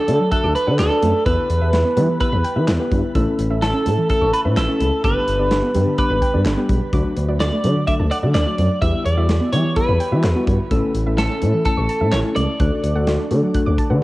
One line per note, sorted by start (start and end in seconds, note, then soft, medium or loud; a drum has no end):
0.00 0.30 A4 loud
0.08 0.19 D3 loud
0.08 0.14 A3 medium
0.08 0.21 D4 medium
0.08 0.21 F#4 medium
0.08 0.21 A4 medium
0.08 0.21 D5 medium
0.08 closed hi-hat medium
0.20 0.26 F#3 medium
0.31 0.51 D4 medium
0.31 0.51 F#4 medium
0.31 0.55 A4 loud
0.31 0.51 A4 medium
0.31 0.51 E5 medium
0.31 0.38 F#6 loud
0.31 kick medium
0.31 closed hi-hat medium
0.43 0.54 D2 medium
0.43 0.50 D6 medium
0.55 0.79 B4 loud
0.55 0.61 A5 medium
0.55 closed hi-hat medium
0.67 0.78 D3 loud
0.67 0.80 D4 medium
0.67 0.80 F#4 medium
0.67 0.80 A4 medium
0.67 0.80 D5 medium
0.67 0.73 F#5 medium
0.79 0.90 D2 loud
0.79 0.85 F#4 medium
0.79 1.26 A4 loud
0.79 snare loud
0.79 clap medium
0.79 closed hi-hat medium
0.90 1.10 D4 medium
0.90 0.97 D4 medium
0.90 1.10 F#4 medium
0.90 1.10 A4 medium
0.90 1.10 D5 medium
1.03 1.13 F#2 loud
1.03 1.09 A3 medium
1.03 closed hi-hat medium
1.26 1.37 E2 loud
1.26 1.46 B3 medium
1.26 1.46 E4 medium
1.26 1.46 G4 medium
1.26 2.19 B4 loud
1.26 1.46 B4 medium
1.26 1.32 E6 loud
1.26 kick loud
1.26 closed hi-hat medium
1.50 1.60 E2 loud
1.50 closed hi-hat medium
1.61 1.72 E2 loud
1.61 1.81 B3 medium
1.61 1.81 E4 medium
1.61 1.81 G4 medium
1.61 1.81 B4 medium
1.61 1.68 E5 medium
1.73 1.84 E2 loud
1.73 1.79 E4 medium
1.73 snare loud
1.73 closed hi-hat medium
1.85 1.91 B3 medium
1.97 2.08 E3 loud
1.97 2.03 G3 medium
1.97 2.10 B3 medium
1.97 2.10 E4 medium
1.97 2.10 G4 medium
1.97 2.10 B4 loud
1.97 closed hi-hat medium
2.09 2.15 E3 medium
2.20 2.40 B3 medium
2.20 2.40 E4 medium
2.20 2.40 G4 medium
2.20 2.40 B4 medium
2.20 2.65 B4 medium
2.20 2.27 E6 loud
2.20 kick medium
2.20 closed hi-hat medium
2.32 2.43 E2 loud
2.32 2.39 B5 medium
2.44 2.50 G5 medium
2.44 closed hi-hat medium
2.56 2.67 E3 loud
2.56 2.69 B3 medium
2.56 2.69 E4 medium
2.56 2.69 G4 medium
2.56 2.69 B4 medium
2.56 2.62 E5 medium
2.68 2.79 E2 loud
2.68 2.74 E4 medium
2.68 snare loud
2.68 clap medium
2.68 closed hi-hat medium
2.79 2.99 B3 medium
2.79 2.86 B3 medium
2.79 2.99 E4 medium
2.79 2.99 G4 medium
2.79 2.99 B4 loud
2.91 3.02 G2 loud
2.91 2.98 G3 medium
2.91 kick medium
2.91 closed hi-hat medium
3.15 3.26 A1 loud
3.15 3.35 A3 loud
3.15 3.35 C#4 medium
3.15 3.35 E4 medium
3.15 3.35 A4 loud
3.15 3.21 E6 loud
3.15 kick loud
3.15 closed hi-hat medium
3.39 3.49 A1 loud
3.39 closed hi-hat medium
3.50 3.61 A1 loud
3.50 3.70 A3 medium
3.50 3.70 C#4 medium
3.50 3.70 E4 medium
3.50 3.70 A4 medium
3.50 3.56 E5 medium
3.62 3.73 A1 loud
3.62 3.68 E4 medium
3.62 4.08 A4 loud
3.62 snare loud
3.62 closed hi-hat medium
3.74 3.80 C#4 medium
3.86 3.97 A2 loud
3.86 3.99 A3 medium
3.86 3.92 A3 medium
3.86 3.99 C#4 medium
3.86 3.99 E4 medium
3.86 3.99 A4 medium
3.86 closed hi-hat medium
3.98 4.04 E3 medium
4.09 4.29 A3 medium
4.09 4.29 C#4 medium
4.09 4.29 E4 medium
4.09 4.29 A4 medium
4.09 4.32 A4 loud
4.09 4.16 E6 loud
4.09 kick medium
4.09 closed hi-hat medium
4.21 4.32 A1 loud
4.21 4.27 C#6 medium
4.33 4.40 B4 loud
4.33 4.39 A5 medium
4.33 closed hi-hat medium
4.45 4.56 A2 medium
4.45 4.58 A3 medium
4.45 4.58 C#4 medium
4.45 4.58 E4 medium
4.45 4.58 B4 medium
4.45 4.51 E5 medium
4.57 4.67 A1 loud
4.57 4.63 E4 medium
4.57 5.04 A4 loud
4.57 snare loud
4.57 clap medium
4.57 closed hi-hat medium
4.68 4.88 A3 medium
4.68 4.75 C#4 medium
4.68 4.88 C#4 medium
4.68 4.88 E4 medium
4.68 4.88 A4 medium
4.80 4.91 C#2 loud
4.80 4.86 A3 medium
4.80 closed hi-hat medium
5.04 5.15 G1 loud
5.04 5.24 G3 medium
5.04 5.24 B3 medium
5.04 5.24 D4 medium
5.04 5.24 G4 medium
5.04 5.98 B4 loud
5.04 5.10 D6 loud
5.04 kick loud
5.04 closed hi-hat medium
5.27 5.38 G1 loud
5.27 closed hi-hat medium
5.39 5.50 G1 loud
5.39 5.59 G3 medium
5.39 5.59 B3 medium
5.39 5.59 D4 medium
5.39 5.59 G4 medium
5.39 5.45 D5 medium
5.51 5.62 G1 loud
5.51 5.57 D4 medium
5.51 snare loud
5.51 closed hi-hat medium
5.63 5.69 B3 medium
5.75 5.86 G2 loud
5.75 5.88 G3 medium
5.75 5.81 G3 medium
5.75 5.88 B3 medium
5.75 5.88 D4 medium
5.75 5.88 G4 loud
5.75 closed hi-hat medium
5.87 5.93 D3 medium
5.98 6.18 G3 medium
5.98 6.18 B3 medium
5.98 6.18 D4 medium
5.98 6.18 G4 medium
5.98 6.43 B4 medium
5.98 6.04 D6 loud
5.98 kick medium
5.98 closed hi-hat medium
6.10 6.21 G1 loud
6.10 6.16 B5 medium
6.22 6.28 G5 medium
6.22 kick medium
6.22 closed hi-hat medium
6.34 6.45 G2 loud
6.34 6.47 G3 medium
6.34 6.47 B3 medium
6.34 6.47 D4 medium
6.34 6.47 G4 medium
6.34 6.40 D5 medium
6.45 6.56 G1 loud
6.45 6.52 D4 medium
6.45 snare loud
6.45 clap medium
6.45 closed hi-hat medium
6.57 6.77 G3 medium
6.57 6.77 B3 medium
6.57 6.64 B3 medium
6.57 6.77 D4 medium
6.57 6.77 G4 loud
6.69 6.80 B1 medium
6.69 6.75 G3 medium
6.69 kick loud
6.69 closed hi-hat medium
6.93 7.04 D2 loud
6.93 7.13 F#3 medium
6.93 7.13 A3 medium
6.93 7.13 D4 medium
6.93 7.13 F#4 loud
6.93 6.99 D6 loud
6.93 kick loud
6.93 closed hi-hat medium
7.16 7.27 D2 loud
7.16 closed hi-hat medium
7.28 7.39 D2 loud
7.28 7.48 F#3 medium
7.28 7.48 A3 medium
7.28 7.48 D4 medium
7.28 7.48 F#4 medium
7.28 7.35 D5 medium
7.40 7.51 D2 loud
7.40 7.46 D4 medium
7.40 7.87 D5 loud
7.40 snare loud
7.40 closed hi-hat medium
7.52 7.58 A3 medium
7.64 7.75 D3 loud
7.64 7.77 F#3 medium
7.64 7.70 F#3 medium
7.64 7.77 A3 medium
7.64 7.77 D4 medium
7.64 7.77 F#4 medium
7.64 closed hi-hat medium
7.76 7.82 D3 medium
7.87 8.07 F#3 medium
7.87 8.07 A3 medium
7.87 8.07 D4 medium
7.87 8.07 A4 medium
7.87 7.94 E5 loud
7.87 7.94 D6 loud
7.87 kick medium
7.87 closed hi-hat medium
7.99 8.10 D2 medium
7.99 8.05 A5 medium
8.11 8.17 D5 loud
8.11 8.17 F#5 medium
8.11 closed hi-hat medium
8.23 8.34 D3 loud
8.23 8.36 F#3 medium
8.23 8.36 A3 medium
8.23 8.36 D4 medium
8.23 8.36 F#4 medium
8.23 8.29 D5 medium
8.35 8.45 D2 loud
8.35 8.41 D4 medium
8.35 8.81 D5 loud
8.35 snare loud
8.35 clap medium
8.35 closed hi-hat medium
8.46 8.66 F#3 medium
8.46 8.53 A3 medium
8.46 8.66 A3 medium
8.46 8.66 D4 medium
8.46 8.66 F#4 medium
8.58 8.69 F#2 loud
8.58 8.64 F#3 medium
8.58 closed hi-hat medium
8.82 8.93 E2 loud
8.82 9.02 G3 medium
8.82 9.02 B3 medium
8.82 9.02 E4 medium
8.82 9.02 G4 medium
8.82 9.05 E5 loud
8.82 8.88 E6 loud
8.82 kick loud
8.82 closed hi-hat medium
9.05 9.16 E2 medium
9.05 9.52 D5 loud
9.05 closed hi-hat medium
9.17 9.28 E2 loud
9.17 9.37 G3 medium
9.17 9.37 B3 medium
9.17 9.37 E4 medium
9.17 9.37 F#4 medium
9.17 9.23 E5 medium
9.29 9.40 E2 loud
9.29 9.35 E4 medium
9.29 snare loud
9.29 closed hi-hat medium
9.41 9.47 B3 medium
9.53 9.64 E3 loud
9.53 9.59 G3 medium
9.53 9.66 G3 medium
9.53 9.66 B3 medium
9.53 9.66 E4 medium
9.53 9.66 G4 medium
9.53 9.77 C#5 medium
9.53 closed hi-hat medium
9.65 9.71 E3 medium
9.76 9.96 G3 medium
9.76 9.96 B3 medium
9.76 9.96 E4 medium
9.76 9.96 G4 medium
9.76 10.43 B4 medium
9.76 9.82 E6 loud
9.76 kick medium
9.76 closed hi-hat medium
9.88 9.99 E2 loud
9.88 9.94 B5 medium
10.00 10.06 G5 medium
10.00 closed hi-hat medium
10.12 10.23 E3 loud
10.12 10.25 G3 medium
10.12 10.25 B3 medium
10.12 10.25 E4 medium
10.12 10.25 F#4 medium
10.12 10.18 E5 medium
10.24 10.34 E2 loud
10.24 10.30 E4 medium
10.24 snare loud
10.24 clap medium
10.24 closed hi-hat medium
10.35 10.55 G3 medium
10.35 10.55 B3 medium
10.35 10.42 B3 medium
10.35 10.55 E4 medium
10.35 10.55 F#4 loud
10.47 10.58 G2 loud
10.47 10.53 G3 medium
10.47 kick loud
10.47 closed hi-hat medium
10.71 10.82 A1 loud
10.71 10.91 A3 loud
10.71 10.91 C#4 medium
10.71 10.91 E4 medium
10.71 10.91 A4 loud
10.71 10.77 E6 loud
10.71 kick loud
10.71 closed hi-hat medium
10.94 11.05 A1 loud
10.94 closed hi-hat medium
11.06 11.17 A1 loud
11.06 11.26 A3 medium
11.06 11.26 C#4 medium
11.06 11.26 E4 medium
11.06 11.26 A4 medium
11.06 11.12 E5 medium
11.18 11.29 A1 loud
11.18 11.24 E4 medium
11.18 11.64 A4 medium
11.18 snare loud
11.18 closed hi-hat medium
11.30 11.36 C#4 medium
11.42 11.53 A2 loud
11.42 11.48 A3 medium
11.42 11.55 A3 medium
11.42 11.55 C#4 medium
11.42 11.55 E4 medium
11.42 11.55 A4 medium
11.42 closed hi-hat medium
11.54 11.60 E3 medium
11.65 11.85 A3 medium
11.65 11.85 C#4 medium
11.65 11.85 E4 medium
11.65 12.14 A4 medium
11.65 11.85 A4 medium
11.65 11.72 E6 loud
11.65 kick medium
11.65 closed hi-hat medium
11.77 11.88 A1 loud
11.77 11.83 C#6 medium
11.89 11.95 A5 loud
11.89 closed hi-hat medium
12.01 12.12 A2 medium
12.01 12.14 A3 medium
12.01 12.14 C#4 medium
12.01 12.14 E4 medium
12.01 12.14 A4 medium
12.01 12.07 E5 medium
12.12 12.23 A1 loud
12.12 12.19 E4 loud
12.12 12.19 C#5 loud
12.12 snare loud
12.12 clap medium
12.12 closed hi-hat medium
12.24 12.44 A3 medium
12.24 12.31 C#4 medium
12.24 12.44 C#4 medium
12.24 12.44 E4 medium
12.24 12.44 A4 medium
12.36 12.47 C#2 loud
12.36 12.42 A3 medium
12.36 13.98 D5 loud
12.36 closed hi-hat medium
12.60 12.71 D2 loud
12.60 12.80 A3 medium
12.60 12.80 D4 medium
12.60 12.80 F#4 medium
12.60 12.80 A4 medium
12.60 12.66 F#6 loud
12.60 kick loud
12.60 closed hi-hat medium
12.84 12.94 D2 loud
12.84 closed hi-hat medium
12.95 13.06 D2 loud
12.95 13.15 A3 medium
12.95 13.15 D4 medium
12.95 13.15 F#4 medium
12.95 13.15 A4 loud
12.95 13.01 F#5 medium
13.07 13.18 D2 loud
13.07 13.13 F#4 medium
13.07 snare loud
13.07 closed hi-hat medium
13.19 13.25 D4 medium
13.31 13.42 D3 loud
13.31 13.37 A3 medium
13.31 13.44 A3 medium
13.31 13.44 D4 medium
13.31 13.44 F#4 medium
13.31 13.44 A4 loud
13.31 closed hi-hat medium
13.43 13.49 F#3 medium
13.54 13.74 A3 medium
13.54 13.74 D4 medium
13.54 13.74 F#4 medium
13.54 13.74 A4 loud
13.54 13.61 F#6 loud
13.54 kick medium
13.54 closed hi-hat medium
13.66 13.77 D2 medium
13.66 13.72 D6 medium
13.78 13.84 A5 medium
13.78 kick medium
13.78 closed hi-hat medium
13.90 14.01 D3 loud
13.90 14.03 A3 medium
13.90 14.03 D4 medium
13.90 14.03 F#4 medium
13.90 14.03 B4 loud
13.90 13.96 F#5 medium